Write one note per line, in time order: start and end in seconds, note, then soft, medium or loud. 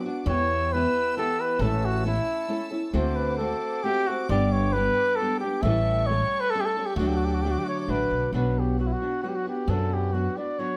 0.00 0.25 B4 medium
0.00 0.24 F#5 medium
0.00 0.24 D6 medium
0.06 0.28 B3 soft
0.06 0.27 D4 medium
0.06 0.27 F#4 medium
0.26 0.84 E2 loud
0.26 0.73 E3 medium
0.26 0.72 B3 medium
0.26 0.75 E4 medium
0.26 0.72 G4 medium
0.26 1.58 B4 medium
0.26 0.74 C#5 loud
0.26 1.59 G5 medium
0.26 1.56 E6 medium
0.73 1.16 E3 medium
0.73 1.16 B3 medium
0.73 1.17 E4 medium
0.73 1.17 G4 medium
0.73 1.16 B4 loud
1.17 1.61 E3 medium
1.17 1.61 B3 medium
1.17 1.61 E4 medium
1.17 1.61 G4 medium
1.17 1.42 A4 loud
1.40 1.62 B4 medium
1.57 2.18 A1 loud
1.57 2.92 C#5 medium
1.57 2.92 A5 medium
1.57 2.91 E6 medium
1.61 2.05 A2 medium
1.61 2.06 E3 medium
1.61 2.04 A3 medium
1.61 2.05 C#4 medium
1.61 2.05 E4 medium
1.61 1.87 A4 medium
1.61 2.06 A4 medium
1.85 2.06 F#4 medium
2.04 2.47 A3 medium
2.04 2.47 C#4 medium
2.04 2.48 E4 medium
2.04 2.70 E4 medium
2.04 2.49 A4 medium
2.48 2.72 A3 medium
2.48 2.71 C#4 medium
2.48 2.71 E4 medium
2.48 2.70 A4 medium
2.71 2.92 A3 soft
2.71 2.94 C#4 soft
2.71 2.94 E4 soft
2.71 2.93 A4 soft
2.92 3.52 D2 loud
2.92 3.43 D3 medium
2.92 3.38 A3 medium
2.92 3.38 C4 medium
2.92 3.39 F#4 loud
2.92 3.40 A4 medium
2.92 3.17 C5 medium
2.92 4.27 C5 medium
2.92 4.27 F#5 medium
2.92 5.59 D6 medium
3.16 3.37 B4 medium
3.37 3.82 A3 medium
3.37 3.83 C4 medium
3.37 3.84 F#4 medium
3.37 3.85 A4 medium
3.83 4.07 A3 medium
3.83 4.07 C4 medium
3.83 4.08 F#4 medium
3.83 4.09 G4 loud
3.83 4.07 A4 medium
4.07 4.30 C4 soft
4.07 4.29 F#4 medium
4.07 4.30 F#4 soft
4.07 4.30 A4 soft
4.27 4.87 G1 loud
4.27 4.74 G2 medium
4.27 4.74 D3 medium
4.27 4.74 G3 medium
4.27 4.74 B3 medium
4.27 5.61 B4 medium
4.27 4.53 D5 medium
4.27 6.94 G5 medium
4.31 4.75 D4 medium
4.31 4.75 G4 loud
4.52 4.74 C#5 medium
4.72 5.19 G3 soft
4.72 5.19 B3 medium
4.72 5.20 D4 medium
4.72 5.20 G4 medium
4.72 5.17 B4 loud
5.16 5.39 A4 loud
5.20 5.42 G3 medium
5.20 5.43 B3 medium
5.20 5.42 D4 medium
5.20 5.42 G4 medium
5.40 5.64 B3 soft
5.40 5.64 D4 soft
5.40 5.63 G4 medium
5.40 5.64 G4 soft
5.44 5.63 G3 soft
5.62 6.21 A1 loud
5.62 6.09 A2 medium
5.62 6.09 E3 loud
5.62 6.08 G3 medium
5.62 6.09 A3 medium
5.62 6.09 C#4 medium
5.62 8.29 A4 medium
5.62 6.10 A4 medium
5.62 6.08 E5 medium
5.62 6.96 C#6 medium
6.06 6.53 G3 medium
6.06 6.53 A3 medium
6.06 6.41 C#5 loud
6.10 6.54 C#4 medium
6.10 6.54 A4 medium
6.40 6.52 B4 loud
6.50 6.62 A4 loud
6.54 6.77 G3 medium
6.54 6.77 A3 medium
6.54 6.77 C#4 medium
6.54 6.76 A4 medium
6.61 6.67 G4 medium
6.65 6.87 A4 medium
6.77 6.99 G3 soft
6.77 6.98 A3 soft
6.77 6.99 C#4 soft
6.77 6.98 A4 soft
6.86 6.96 G4 medium
6.96 7.55 D2 loud
6.96 8.33 D3 medium
6.96 7.44 F#3 medium
6.96 7.43 A3 medium
6.96 7.09 F#4 medium
6.96 7.46 F#4 medium
6.96 8.31 F#5 medium
6.96 8.31 D6 medium
7.00 7.45 D4 medium
7.07 7.18 G4 medium
7.16 7.26 F#4 medium
7.25 7.35 G4 medium
7.34 7.43 F#4 medium
7.42 7.87 F#3 medium
7.42 7.87 A3 medium
7.42 7.88 D4 medium
7.42 7.52 G4 medium
7.46 7.88 F#4 medium
7.50 7.60 F#4 medium
7.59 7.65 G4 medium
7.64 7.66 F#4 medium
7.64 7.80 C#5 medium
7.80 7.92 C#5 medium
7.87 8.08 A1 medium
7.87 8.34 F#3 medium
7.87 8.33 A3 medium
7.87 8.33 D4 medium
7.87 8.34 F#4 medium
7.87 8.33 B4 medium
8.11 8.31 B1 medium
8.32 8.91 B1 loud
8.32 8.78 B2 medium
8.32 8.77 F#3 medium
8.32 8.79 B3 medium
8.32 8.78 D4 medium
8.32 8.79 F#4 medium
8.32 10.77 B4 medium
8.32 8.61 B4 medium
8.32 10.77 F#5 medium
8.59 8.79 G4 medium
8.79 9.01 F#3 soft
8.79 9.02 B3 soft
8.79 9.02 D4 medium
8.79 8.88 F#4 medium
8.79 9.01 F#4 medium
8.87 8.94 E4 medium
8.92 9.22 F#4 medium
9.02 9.23 B3 soft
9.02 9.23 D4 soft
9.02 9.23 F#4 soft
9.22 9.46 F#3 medium
9.22 9.47 B3 medium
9.22 9.47 D4 medium
9.22 9.30 F#4 medium
9.22 9.46 F#4 medium
9.29 9.37 G4 medium
9.35 9.47 F#4 medium
9.47 9.67 B3 soft
9.47 9.68 D4 soft
9.47 9.69 F#4 soft
9.47 9.71 G4 medium
9.68 10.26 F#2 loud
9.68 10.13 B2 medium
9.68 10.12 F#3 medium
9.68 10.14 B3 medium
9.68 10.14 D4 medium
9.68 10.13 F#4 medium
9.68 9.95 A4 medium
9.94 10.14 G4 medium
10.13 10.36 F#3 medium
10.13 10.37 B3 medium
10.13 10.37 D4 medium
10.13 10.38 F#4 medium
10.13 10.36 F#4 medium
10.37 10.59 B3 soft
10.37 10.58 D4 soft
10.37 10.58 F#4 soft
10.37 10.60 D5 medium
10.59 10.77 F#3 medium
10.59 10.77 B3 medium
10.59 10.77 D4 medium
10.59 10.77 F#4 medium
10.59 10.77 C#5 loud